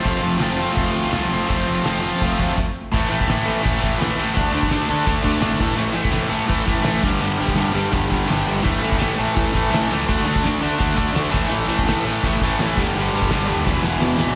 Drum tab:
CC |----------------|------------x---|x-x-x-x-x-x-x-x-|x-x-x-x-x-x-x-x-|
HH |o-o-o-o-o-o-o-o-|o-o-o-o-o-o-----|----------------|----------------|
SD |----o-------o---|----o--o--------|----o-------o---|----o-------o---|
BD |o-------o-------|o-------o-o-o---|o--o----o-o-----|o--o----o-o---o-|

CC |x-x-x-x-x-x-x-x-|x-x-x-x-x-x-x-x-|x-x-x-x-x-x-x-x-|x-x-x-x-x-x-x-x-|
HH |----------------|----------------|----------------|----------------|
SD |----o-------o---|----o-------o---|----o-------o---|----o-------o---|
BD |---o----o-o---o-|---o----o-o-----|o--o----o-o-----|o--o----o-o---o-|

CC |x-x-x-x-x-x-x-x-|x-x-x-x---------|
HH |----------------|----------------|
SD |----o-------o---|----o---o-o-o-o-|
BD |---o----o-o---o-|---o----o-------|